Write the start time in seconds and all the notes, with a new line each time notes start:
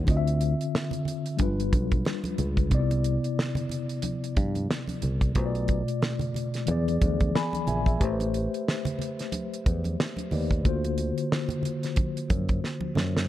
0.05 D2 D3 C4, kick, closed hi-hat, muted conga
0.09 F4 D#5
0.17 E5
0.27 closed hi-hat
0.41 closed hi-hat
0.61 closed hi-hat
0.75 snare
0.91 closed hi-hat, low conga
1.05 closed hi-hat, low conga
1.26 closed hi-hat
1.37 G1 G3 D4 F4, kick, closed hi-hat, muted conga, high conga
1.42 B4
1.60 closed hi-hat
1.73 B1, kick, closed hi-hat, high conga
1.91 kick, closed hi-hat, high conga
2.05 snare, muted conga
2.24 closed hi-hat, muted conga, high conga
2.38 C#2, closed hi-hat, low conga
2.57 kick, closed hi-hat
2.69 C2 C3 B3 D#4, kick, closed hi-hat, muted conga
2.75 D5
2.79 E4
2.91 closed hi-hat, muted conga
3.04 closed hi-hat
3.24 closed hi-hat
3.39 snare
3.55 closed hi-hat, muted conga, low conga
3.69 closed hi-hat, low conga
3.89 closed hi-hat
4.02 closed hi-hat, muted conga, high conga
4.24 closed hi-hat
4.37 G2, kick, closed hi-hat, high conga
4.55 closed hi-hat, high conga
4.71 snare
4.88 closed hi-hat, high conga
5.02 C2, closed hi-hat, low conga
5.21 kick, closed hi-hat
5.34 B1 B2 A3 F4, kick, closed hi-hat, muted conga
5.39 C5
5.46 D5
5.55 closed hi-hat
5.68 kick, closed hi-hat
5.88 closed hi-hat
6.02 snare, muted conga
6.19 closed hi-hat, low conga
6.34 closed hi-hat, low conga
6.54 snare, closed hi-hat
6.66 E2 E3 B3 G#4, closed hi-hat, high conga
6.71 D5
6.88 closed hi-hat, muted conga
7.02 D2, kick, closed hi-hat, high conga
7.20 kick, closed hi-hat, high conga
7.35 G#5 B5, snare
7.53 closed hi-hat, high conga
7.67 A#1 E5 G#5, closed hi-hat, low conga
7.86 E5, kick, closed hi-hat
7.98 A1 A3 G4 B4, kick, closed hi-hat
8.04 C5
8.20 closed hi-hat, muted conga
8.34 closed hi-hat
8.54 closed hi-hat
8.68 snare
8.85 closed hi-hat, muted conga, low conga
8.99 closed hi-hat, low conga
9.19 snare, closed hi-hat
9.32 closed hi-hat, muted conga, high conga
9.54 closed hi-hat
9.66 E2, kick, closed hi-hat, high conga
9.84 closed hi-hat, high conga
10.00 snare
10.17 closed hi-hat, high conga
10.31 D#2 A3 G4 B4 D5, open hi-hat, low conga
10.51 kick, closed hi-hat
10.63 D2 D3 A#3 F4, kick, closed hi-hat
10.67 F#4 C5
10.84 closed hi-hat, muted conga
10.98 closed hi-hat
11.18 closed hi-hat
11.32 snare
11.49 closed hi-hat, low conga
11.63 closed hi-hat, low conga
11.83 snare, closed hi-hat
11.96 kick, closed hi-hat, high conga
12.17 closed hi-hat
12.30 F#2, kick, closed hi-hat, high conga
12.49 kick, closed hi-hat
12.64 snare
12.81 muted conga, high conga
12.95 F#2, snare, low conga
13.17 snare